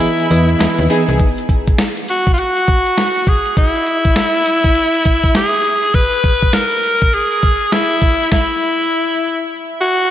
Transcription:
Already playing: E3 B3 E4 G#4 D#5
0.00 closed hi-hat, tambourine
0.20 closed hi-hat
0.30 E2 E3 B3 B4 D#5, closed hi-hat, tambourine
0.49 closed hi-hat
0.60 D#2, snare, clap, closed hi-hat, tambourine
0.78 D#2, closed hi-hat
0.89 E3 B3 D#4 E4 G#4, open hi-hat
1.09 C2, closed hi-hat
1.20 kick, closed hi-hat
1.38 closed hi-hat
1.49 kick, closed hi-hat
1.67 kick, closed hi-hat
1.78 snare, closed hi-hat
1.97 closed hi-hat
2.08 F#4, closed hi-hat
2.27 kick, closed hi-hat
2.34 F4
2.38 F#4, closed hi-hat
2.57 closed hi-hat
2.68 kick, closed hi-hat
2.86 closed hi-hat
2.98 snare, closed hi-hat
3.16 closed hi-hat
3.27 G#4, kick, closed hi-hat
3.46 closed hi-hat
3.57 E4, kick, closed hi-hat
3.75 closed hi-hat
3.86 closed hi-hat
4.05 kick, closed hi-hat
4.16 snare, closed hi-hat
4.34 closed hi-hat
4.46 closed hi-hat
4.64 kick, closed hi-hat
4.75 closed hi-hat
4.94 closed hi-hat
5.05 kick, closed hi-hat
5.23 kick, closed hi-hat
5.35 G#4, snare, closed hi-hat
5.53 closed hi-hat
5.65 closed hi-hat
5.83 closed hi-hat
5.94 B4, kick, closed hi-hat
6.13 closed hi-hat
6.24 kick, closed hi-hat
6.42 kick, closed hi-hat
6.53 A#4, snare, closed hi-hat
6.72 closed hi-hat
6.83 closed hi-hat
7.02 kick, closed hi-hat
7.13 G#4, closed hi-hat
7.32 closed hi-hat
7.42 kick, closed hi-hat
7.61 closed hi-hat
7.72 E4, snare, closed hi-hat
7.90 closed hi-hat
8.02 kick, closed hi-hat
8.20 closed hi-hat
8.32 E4, kick, snare
9.81 F#4

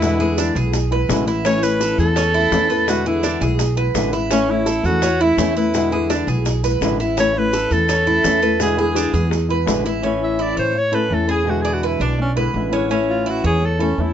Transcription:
Already playing: E2 E4 B4
0.02 B2 D3 G#3 B3 E4, high bongo, maracas
0.20 D3 G#3 B3 E4 G#4
0.38 D4, high bongo, maracas
0.55 B1 G#3 B3 E4 G#4, high bongo, maracas
0.73 muted nylon-string guitar stroke, high bongo, maracas
0.91 G#3 B3 E4 B4, high bongo
1.09 A1 B2 D3 G#3 B3 E4, high bongo, low bongo, maracas
1.27 G#3 B3 E4, high bongo, maracas
1.44 E3 A3 C#4 E4 C#5, high bongo, maracas
1.63 A3 C#4 E4 B4, maracas
1.81 A4, high bongo, maracas
1.98 E2 A3 C#4 E4 A4, maracas
2.16 C#4, muted nylon-string guitar stroke, high bongo, maracas
2.34 A3 C#4 E4
2.51 E2 E3 A3 C#4 E4, high bongo, low bongo, maracas
2.70 A3 C#4 E4 B4, maracas
2.87 B2 D3 G#3 B3 E4 F#4, high bongo, maracas
3.05 D3 G#3 B3 E4 G#4
3.23 D4, high bongo, maracas
3.41 B1 G#3 B3 E4 G#4, high bongo, maracas
3.59 muted nylon-string guitar stroke, high bongo, maracas
3.77 G#3 B3 E4 B4, high bongo
3.94 A1 B2 D3 G#3 B3 E4, high bongo, low bongo, maracas
4.12 G#3 B3 E4, high bongo, maracas
4.31 E3 A3 C#4 E4, high bongo, maracas
4.48 A3 C#4 E4
4.66 A4, high bongo, maracas
4.84 E2 A3 C#4 E4 F#4, maracas
5.02 C#4, muted nylon-string guitar stroke, high bongo, maracas
5.20 A3 C#4 E4
5.37 E2 E3 A3 C#4 E4, high bongo, low bongo, maracas
5.55 A3 C#4 E4 B4, maracas
5.74 B2 D3 G#3 B3 E4, high bongo, maracas
5.92 D3 G#3 B3 E4 G#4
6.10 D4, high bongo, maracas
6.27 B1 G#3 B3 E4 G#4, high bongo, maracas
6.46 muted nylon-string guitar stroke, high bongo, maracas
6.64 G#3 B3 E4 B4, high bongo, maracas
6.81 A1 B2 D3 G#3 B3 E4, high bongo, low bongo, maracas
6.99 G#3 E4, high bongo, maracas
7.17 E3 A3 C#4 E4 C#5, high bongo, maracas
7.35 A3 C#4 E4 B4
7.53 A4, high bongo, maracas
7.70 E2 A3 C#4 E4 A4, maracas
7.89 C#4, muted nylon-string guitar stroke, high bongo, maracas
8.07 A3 C#4 E4
8.24 E2 E3 A3 C#4 E4, high bongo, low bongo, maracas
8.41 A3 C#4 E4 B4, maracas
8.59 B2 D3 G#3 B3 E4 G#4, high bongo, maracas
8.77 D3 G#3 B3 E4 G#4
8.95 D4, high bongo, maracas
9.12 E2 G#3 B3 E4 G#4, high bongo, maracas
9.30 muted nylon-string guitar stroke, high bongo, maracas
9.49 G#3 B3 E4 B4, high bongo
9.66 A1 B2 D3 G#3 B3 E4, high bongo, low bongo, maracas
9.84 G#3 B3 E4, high bongo, maracas
10.02 E3 A3 C#4 E4
10.24 E5
10.39 E4 D5
10.57 A2 C5 C#5
10.75 C#5, muted nylon-string guitar stroke
10.92 A3 C#4 E4 A4 B4
11.09 E2 E3 A3 C#4 E4
11.14 A4
11.27 A3 C#4 E4 G#4
11.44 B2 D3 G#3 B3
11.49 E4 F#4
11.62 G#4 D5
11.74 F#4
11.83 E4 B4
12.00 B1 D4
12.18 C#4, muted nylon-string guitar stroke
12.36 D3 G#3 B3 E4 B4
12.54 A1 D3 G#3 B3 E4
12.71 D3 G#3 B3 C#4 E4
12.89 E3 A3 C#4 E4
13.09 F4
13.26 E4 F#4
13.44 E2 G#4 C#5
13.61 muted nylon-string guitar stroke
13.65 A4
13.79 A3 C#4 E4 A4
13.98 E2 E3 A3 C#4 E4

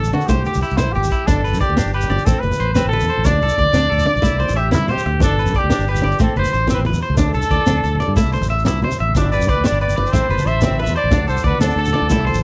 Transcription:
Already playing: A4
0.00 A1
0.04 low conga, shekere
0.13 D3 D4 F#4, closed hi-hat, muted conga
0.21 shekere
0.26 C2 A3 G4 C5, kick, closed hi-hat, shekere
0.31 low conga
0.45 G4, closed hi-hat, high conga, low conga, shekere
0.54 C2, muted conga, low conga, shekere
0.61 E4 G4, closed hi-hat
0.70 C2, low conga, shekere
0.77 B3 E4 C5, snare, closed hi-hat, low conga, shekere
0.88 A1
0.92 G#1 G4, closed hi-hat
0.96 high conga, low conga
1.04 low conga, shekere
1.11 E4, kick, closed hi-hat, shekere
1.26 G1 D4 A4, kick, closed hi-hat, muted conga, low conga, shekere
1.44 B4, closed hi-hat, low conga, shekere
1.53 G2, low conga, shekere
1.60 G4 D5, kick, closed hi-hat, high conga
1.69 D2, muted conga
1.77 B3 D4, snare, closed hi-hat, low conga, shekere
1.86 G1, low conga, shekere
1.93 G4 B4, closed hi-hat
2.01 high conga, low conga, shekere
2.10 G1 D4 D5, closed hi-hat, muted conga
2.18 shekere
2.25 A1 A3 C4 A4, kick, closed hi-hat, low conga, shekere
2.39 F#1 B4, closed hi-hat
2.44 high conga
2.51 muted conga, low conga, shekere
2.60 A1 C5, closed hi-hat
2.69 low conga
2.73 B3 C4 B4, snare, closed hi-hat, high conga, low conga, shekere
2.86 A1 A4
2.92 B4, closed hi-hat, muted conga
3.00 E2, low conga, shekere
3.08 C5, closed hi-hat
3.17 A1, high conga
3.25 D2 D4 D5, kick, closed hi-hat, muted conga, low conga, shekere
3.42 C2 A4, closed hi-hat, low conga, shekere
3.49 low conga, shekere
3.58 D2 D5, kick, closed hi-hat, high conga
3.66 muted conga
3.73 D2 C4 D4, snare, closed hi-hat, low conga, shekere
3.82 low conga, shekere
3.90 D2 A4, closed hi-hat
3.98 high conga, low conga, shekere
4.06 D4 D5, closed hi-hat, muted conga
4.16 B1, shekere
4.22 C2 A3 E4, kick, closed hi-hat, low conga, shekere
4.32 C2
4.39 C5, closed hi-hat, high conga
4.49 A1, muted conga, low conga, shekere
4.56 G4 E5, closed hi-hat
4.71 C2 B3 E4, snare, closed hi-hat, high conga, low conga, shekere
4.88 C3 G4 C5, closed hi-hat, muted conga
4.97 low conga, shekere
5.06 D2, muted clean electric guitar stroke, closed hi-hat
5.13 high conga
5.20 G1 D4 A4, kick, closed hi-hat, muted conga, low conga, shekere
5.37 B4, closed hi-hat, low conga, shekere
5.44 G2, low conga, shekere
5.53 D5, kick, closed hi-hat, high conga
5.58 G4, muted conga
5.64 D2
5.70 B3 D4, snare, closed hi-hat, low conga, shekere
5.79 G1, low conga, shekere
5.88 G4 B4, closed hi-hat
5.95 high conga, low conga, shekere
6.02 G1 D4 D5, closed hi-hat, muted conga
6.12 shekere
6.19 A1 A3 C4 A4, kick, closed hi-hat, low conga, shekere
6.36 F#1 B4 C5, closed hi-hat, high conga
6.44 muted conga, low conga, shekere
6.53 A1 C5, snare, closed hi-hat, shekere
6.60 low conga
6.67 B3 C4, snare, closed hi-hat, high conga, low conga, shekere
6.74 B4
6.78 A1
6.85 B4, closed hi-hat, muted conga
6.93 E2, low conga, shekere
7.02 C5, closed hi-hat
7.10 C#2, high conga
7.15 D2 D4 A4, kick, closed hi-hat, muted conga, low conga, shekere
7.34 C2 A4, closed hi-hat, shekere
7.42 low conga, shekere
7.50 D2 D5, kick, closed hi-hat, high conga, low conga
7.61 muted conga
7.66 D2 C4 D4, snare, closed hi-hat, low conga, shekere
7.84 D2 A4, closed hi-hat, shekere
7.95 high conga, low conga
8.00 D4 D5, closed hi-hat, muted conga, shekere
8.08 G2
8.16 C2 A3 E4, kick, closed hi-hat, low conga, shekere
8.24 C2, shekere
8.32 C5, closed hi-hat, high conga, shekere
8.41 A1, muted conga, low conga, shekere
8.49 E5, snare, closed hi-hat
8.59 shekere
8.65 C2 B3 E4, snare, closed hi-hat, high conga, low conga, shekere
8.82 C3 C5, closed hi-hat, muted conga
8.91 low conga, shekere
8.99 A1 E5, closed hi-hat
9.09 high conga
9.14 G1 D4 G5 B5 D6, muted steel-string acoustic guitar stroke, kick, closed hi-hat, muted conga, low conga, shekere
9.31 B4 D5, closed hi-hat, low conga, shekere
9.39 G2, low conga, shekere
9.47 B4 D5, kick, closed hi-hat, high conga
9.54 D2, muted conga
9.64 B3 D4 D5, snare, closed hi-hat, low conga, shekere
9.72 G1, low conga, shekere
9.81 B4 D5, closed hi-hat
9.88 high conga, shekere
9.96 G1 D4 C5 D5, closed hi-hat, muted conga
10.06 shekere
10.12 A1 A3 C4 A5 C6, kick, closed hi-hat, low conga, shekere
10.29 F#1 B4, closed hi-hat, high conga
10.39 muted conga, low conga, shekere
10.46 A1 C5 E5, snare, closed hi-hat
10.55 low conga
10.61 B3 C4, snare, closed hi-hat, high conga, low conga, shekere
10.70 A1
10.79 B4 E5, closed hi-hat, muted conga
10.86 E2, low conga, shekere
10.96 C5 D5, closed hi-hat
11.04 A1, high conga
11.10 D2 D4 F#5 D6, kick, closed hi-hat, muted conga, low conga, shekere
11.27 C2 A4 C5, closed hi-hat, low conga, shekere
11.37 low conga, shekere
11.44 D2 B4 D5, kick, closed hi-hat, high conga
11.55 muted conga
11.60 D2 C4 D4 A4, snare, closed hi-hat, low conga, shekere
11.70 low conga, shekere
11.76 D2 A4, closed hi-hat
11.85 high conga, low conga, shekere
11.93 D4 D5, closed hi-hat, muted conga
12.02 D2
12.09 C2 A3 E4 G5 C6 E6, kick, closed hi-hat, low conga, shekere
12.17 C2
12.27 C5, closed hi-hat, high conga
12.34 A1, muted conga, low conga, shekere

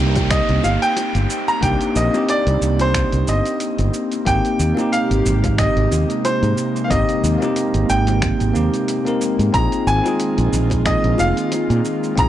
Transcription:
Already playing: C2 A#3 C4 D#4 G4 G5, downlifter
0.15 kick, closed hi-hat, high bongo, cabasa
0.30 D#5, finger snap, kick, closed hi-hat, cabasa
0.49 C2, closed hi-hat
0.63 G1 F5, high bongo, cabasa
0.82 G5, closed hi-hat, cabasa
0.97 closed hi-hat, high bongo, cabasa
1.15 G1, closed hi-hat, cabasa
1.30 cabasa
1.48 A#5, cabasa
1.61 C2 A#3 D4 D#4 G4 G5, kick, closed hi-hat, cabasa
1.81 closed hi-hat, cabasa
1.96 A#1 D#5, cabasa
2.11 A#3 C4, high bongo, cabasa
2.15 D#4 G4
2.29 D5, closed hi-hat, cabasa
2.47 C2, closed hi-hat, cabasa
2.61 C2, cabasa
2.79 C5, closed hi-hat, high bongo, cabasa
2.94 finger snap, kick, closed hi-hat, cabasa
3.12 C2, closed hi-hat, cabasa
3.28 G1 D#5, cabasa
3.46 closed hi-hat, cabasa
3.60 closed hi-hat, cabasa
3.78 G1, closed hi-hat, cabasa
3.94 cabasa
4.12 closed hi-hat, cabasa
4.25 G#1 C3 G#3 A#3 C4 D#4 G4 G5, kick, closed hi-hat, cabasa
4.45 closed hi-hat, cabasa
4.59 D#2, cabasa
4.75 A#3 C4 D#4, high bongo, cabasa
4.81 G4
4.92 F5, closed hi-hat, cabasa
5.11 G#1, closed hi-hat, cabasa
5.26 G#1, cabasa
5.44 kick, closed hi-hat, high bongo, cabasa
5.58 D#5, finger snap, kick, closed hi-hat, cabasa
5.76 G#1, closed hi-hat
5.91 D#2, high bongo, cabasa
6.10 closed hi-hat, cabasa
6.25 C5, closed hi-hat, high bongo, cabasa
6.43 G#2, closed hi-hat, cabasa
6.58 cabasa
6.76 cabasa
6.84 F5
6.88 G#1 A#3 C4 D#4 G4 D#5, kick, closed hi-hat, cabasa
7.09 closed hi-hat, cabasa
7.24 D#2, cabasa
7.38 A#3 C4, cabasa
7.42 D#4 G4, high bongo
7.56 closed hi-hat, cabasa
7.74 G#1, closed hi-hat, cabasa
7.89 G#1 G5, cabasa
8.07 closed hi-hat, high bongo, cabasa
8.22 finger snap, kick, closed hi-hat, cabasa
8.40 G#1, closed hi-hat, cabasa
8.54 D#2 A#3 C4 D#4 G4, cabasa
8.74 closed hi-hat, cabasa
8.88 closed hi-hat, cabasa
9.05 A#3 C4 D#4 A#4, closed hi-hat, cabasa
9.21 cabasa
9.39 G#2, closed hi-hat, cabasa
9.53 A#1 D#3 C4 D#4 F4 G#4 A#5, kick, closed hi-hat, cabasa
9.72 closed hi-hat, cabasa
9.87 G#1 G#5, cabasa
10.02 C4 D#4, high bongo, cabasa
10.06 F4 G#4
10.20 closed hi-hat, cabasa
10.38 A#1, closed hi-hat, cabasa
10.53 A#1, cabasa
10.70 kick, closed hi-hat, high bongo, cabasa
10.86 D#5, finger snap, kick, closed hi-hat, cabasa
11.04 A#1, closed hi-hat
11.18 F1 F5, high bongo, cabasa
11.37 closed hi-hat, cabasa
11.52 closed hi-hat, high bongo, cabasa
11.70 A#2, closed hi-hat, cabasa
11.85 cabasa
12.03 cabasa
12.16 A#1 C4 D#4 F4 G#4 F5 A#5, kick, closed hi-hat, cabasa

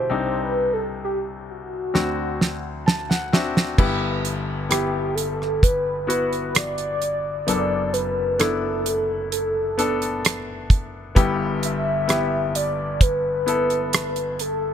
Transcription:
Already playing: B2 E4 G4 C5
0.10 C2 C3 C4 D4 D#4
0.42 B4
0.73 A4
1.04 G4
1.50 F#4
1.94 D2 D3 C4 D4 F#4, snare
2.41 snare
2.86 A5, snare
3.10 F#5, snare
3.33 C4 D4 F#4 E5, snare
3.57 snare
3.78 G1 G2 B3 E4 G4, kick, crash
4.25 closed hi-hat
4.69 B3 E4 G4, cross-stick, closed hi-hat
5.15 A4, closed hi-hat
5.42 cross-stick
5.63 B4, kick, closed hi-hat
6.07 B3 E4 F#4 B4, closed hi-hat
6.33 closed hi-hat
6.55 D5, cross-stick, closed hi-hat
6.78 closed hi-hat
7.02 closed hi-hat
7.47 F#1 F#2 B3 D4 A4 D5, closed hi-hat
7.93 B4, closed hi-hat
8.39 B3 D4 E4 A4, cross-stick, closed hi-hat
8.86 closed hi-hat
9.32 A4, closed hi-hat
9.78 B3 D4 A4, closed hi-hat
10.02 closed hi-hat
10.25 cross-stick, closed hi-hat
10.70 kick, closed hi-hat
11.15 G1 G2 B3 E4 G4, kick, closed hi-hat
11.63 E5, closed hi-hat
12.08 B3 E4 G4, cross-stick, closed hi-hat
12.55 D5, closed hi-hat
13.01 B4, kick, closed hi-hat
13.46 B3 E4 A4, closed hi-hat
13.70 closed hi-hat
13.93 cross-stick, closed hi-hat
14.16 closed hi-hat
14.39 A4, closed hi-hat

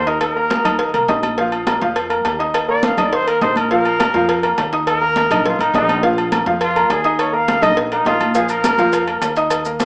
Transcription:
Already playing: D#2
0.06 D#4 A#4 D#5 D#6, cowbell, high conga
0.21 A#4, cowbell, high conga, low agogo
0.36 A#3 A#4 A#5, high conga
0.50 cowbell, high conga, low timbale, low agogo
0.65 D#2 D#4 D#5 D#6, cowbell, high conga, low conga, low agogo
0.79 cowbell, high conga
0.94 C2 A#3 A#4 A#5, high conga, low agogo
1.08 A#1 D#4 D#5 D#6, cowbell, high conga, low timbale, low agogo
1.23 high conga, low agogo
1.37 F3 F4 F5, cowbell, high conga
1.52 low agogo
1.67 A#3 A#4 A#5, cowbell, high conga, low timbale, low agogo
1.81 F2 F3 F4 F5, cowbell, high conga
1.95 cowbell, high conga, low agogo
2.10 A#3 A#4 A#5, high conga, low agogo
2.25 D#2, cowbell, high conga, low timbale, low agogo
2.39 D#4 D#5 D#6, cowbell, high conga
2.54 cowbell, high conga, low agogo
2.68 A#3 A#4 D5 A#5, high conga
2.83 F5, cowbell, high conga, low timbale, low agogo
2.97 D#2 D#4 D5 D#5 D#6, cowbell, high conga, low conga, low agogo
3.12 C5, cowbell, high conga
3.27 A#3 A#4 A#5, high conga, low agogo
3.41 A#1 D#4 C5 D#5 D#6, cowbell, high conga, low timbale, low agogo
3.56 A#4, high conga, low agogo
3.71 F3 F4 A#4 F5, cowbell, high conga
3.85 high conga, low agogo
3.99 A#3 A#4 A#5, cowbell, high conga, low timbale, low agogo
4.14 F2 F3 F4 F5, cowbell, high conga
4.29 cowbell, high conga, low agogo
4.43 A#3 A#4 A#5, high conga, low agogo
4.58 D#2, cowbell, high conga, low timbale, low agogo
4.72 D#4 D#5 D#6, cowbell, high conga
4.87 A#4, cowbell, high conga, low agogo
5.01 A#3 A#4 A#5, high conga
5.16 cowbell, high conga, low timbale, low agogo
5.30 A#1 D#4 D#5 D#6, cowbell, high conga, low conga, low agogo
5.45 F4, cowbell, high conga, low conga
5.59 A1 A#3 D#4 A#4 A#5, high conga, low agogo
5.73 A#1 D#4 D#5 D#6, cowbell, high conga, low timbale, low agogo
5.89 high conga, low agogo
6.03 F3 F4 F5, cowbell, high conga
6.17 high conga, low agogo
6.32 A#3 A#4 A#5, cowbell, high conga, low timbale, low agogo
6.46 F2 F3 F4 F5, cowbell, high conga
6.61 F4, cowbell, high conga, low agogo
6.76 A#3 A#4 A#5, high conga, low agogo
6.90 D#2 G#4, cowbell, high conga, low timbale, low agogo
7.04 D#4 D#5 D#6, cowbell, high conga
7.19 C#5, cowbell, high conga, low agogo
7.33 A#3 A#4 F5 A#5, high conga
7.48 cowbell, high conga, low timbale, low agogo
7.62 A#1 D#4 D#5 D#6, cowbell, high conga, low conga, low agogo
7.77 cowbell, high conga
7.92 A#3 D#4 A#4 A#5, high conga, low agogo
8.05 A#1 D#4 F4 D#5 D#6, cowbell, high conga, low timbale, low agogo
8.21 high conga, low agogo
8.35 F3 F4 G#4 F5, cowbell, high conga, maracas
8.49 A#4, high conga, low agogo, maracas
8.64 A#3 A#4 A#5, cowbell, high conga, low timbale, low agogo, maracas
8.78 F2 F3 F4 F5, cowbell, high conga, maracas
8.93 cowbell, high conga, low agogo, maracas
9.07 A#3 A#4 A#5, high conga, low agogo
9.22 D#2, cowbell, high conga, low timbale, low agogo, maracas
9.36 D#4 D#5 D#6, cowbell, high conga, maracas
9.50 cowbell, high conga, low agogo, maracas
9.65 A#3 A#4 A#5, high conga, maracas
9.80 cowbell, high conga, low timbale, low agogo, maracas

